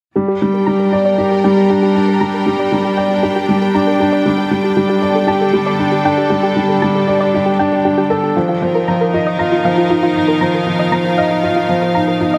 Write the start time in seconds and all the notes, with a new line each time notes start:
0.16 G3 G4
0.28 G4
0.38 G3 G5
0.50 D4 A#4
0.65 G3 A#4 A#5
0.79 A#4
0.92 G4 D5
1.05 D5
1.18 G4
1.31 G4
1.44 G3 G5
1.57 G4
1.70 D4 G4
1.83 G4
1.95 D4
2.08 A#4
2.21 G3 A#5
2.34 A#4
2.46 G3 G4
2.59 D5
2.72 G3
2.85 G4
2.97 D5 G5
3.10 G4
3.23 G4
3.36 G4
3.49 G3
3.61 A#4
3.74 D4 A#5
3.87 A#4
4.00 D4 G4
4.12 D5
4.26 D3 G3
4.38 G4
4.51 G3 G5
4.64 G4
4.77 G3 G4
4.89 G4 A4
5.02 D5
5.15 A4
5.27 G4 A5
5.41 A4
5.53 G3 G4
5.66 D5
5.79 D4
5.92 G4
6.05 D4 G5
6.18 G4
6.30 G3 G4
6.43 G4
6.57 G3
6.69 A4
6.82 G3 A5
6.95 A4
7.08 G4 D5
7.20 D5
7.34 G4
7.46 G4
7.59 D4 G5
7.72 G4
7.85 D4 G4
7.98 G4
8.10 A4
8.23 A4
8.36 D#3 F3 F4
8.49 F4
8.62 F3 A#4
8.69 D#4
8.75 A#4
8.88 F3 A#5
9.01 A#4
9.14 F4 D#5
9.27 D#5 F5
9.39 F4 A#5
9.52 F4
9.65 F3 F5
9.78 F4
9.90 D#4 F4
10.03 F4
10.15 D#4
10.28 A#4
10.41 F3 A#5
10.54 A#4
10.66 F3 F4
10.79 D#5
10.92 F3 A#5
11.05 F4
11.18 D#5 F5
11.31 F4
11.43 F4
11.56 F4
11.69 F3
11.82 A#4
11.95 D#4 A#5
12.08 A#4
12.20 D#4 F4
12.34 D#5